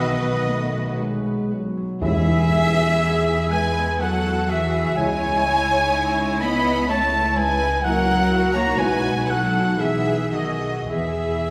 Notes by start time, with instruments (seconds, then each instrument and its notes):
Already playing: double bass section B1, harp B2 B3 E4 F#4, cello section D#3, french horn section B3, violin section F#4 D#5, viola section B4, oboe D#5, flute D#5
0.22 harp B3
0.47 french horn section A3, harp F#4
0.74 harp F#3
0.99 french horn section G#3, harp F#4
1.26 harp B3
1.51 french horn section F#3, harp F#4
1.77 harp F#3
2.02 timpani E2, double bass section E2, harp E3, cello section E3, french horn section G#3 E4, violin section G#4 E5, flute E5, oboe E5
2.27 harp E4
2.52 harp G#4
2.78 harp F#4
3.02 harp G#4, viola section G#4
3.27 harp E4
3.51 cello section G#3, harp G#4, violin section B4 G#5, flute G#5, oboe G#5
3.76 harp B3
4.00 cello section F#3, viola section F#4, harp G#4, violin section A4 F#5, flute F#5, oboe F#5
4.25 harp E4
4.48 cello section E3, violin section G#4 E5, harp G#4, flute E5, oboe E5
4.73 harp B3
4.96 double bass section C#2, harp C#3, cello section G#3, french horn section G#3 E4, viola section E4, violin section C#5 G#5, flute G#5, oboe G#5
5.22 harp C#4
5.46 harp E4
5.70 harp D#4
5.93 harp E4
6.17 harp C#4
6.40 cello section B3, harp E4, violin section D#5 B5, flute B5, oboe B5
6.64 harp G#3
6.89 cello section A3, harp E4, violin section C#5 A5, flute A5, oboe A5
7.13 harp C#4
7.36 cello section G#3, harp E4, violin section B4 G#5, flute G#5, oboe G#5
7.60 harp G#3
7.82 harp C#3, cello section F#3, french horn section A#3 E4, viola section F#4, violin section A#4 F#5, flute F#5, oboe F#5
8.07 harp A#3
8.30 harp E4
8.53 cello section A#3, harp D#4, violin section C#5 A#5, flute A#5, oboe A#5
8.77 double bass section B1, harp B2, cello section G#3, french horn section B3 E4, violin section B4 G#5, flute G#5, oboe G#5
9.04 harp B3
9.27 cello section F#3, harp E4, violin section A4 F#5, flute F#5, oboe F#5
9.54 harp D#4
9.78 harp B2, cello section E3, french horn section B3 G#4, violin section G#4 E5, viola section G#4, flute E5, oboe E5
10.06 harp A3
10.32 cello section D#3, violin section F#4 D#5, harp G#4, oboe D#5, flute D#5
10.61 harp F#4
10.88 double bass section E2, cello section E3, harp E3, french horn section B3 G#4, viola section G#4, violin section G#4 E5, flute E5, oboe E5
11.18 harp G#3
11.46 harp G#4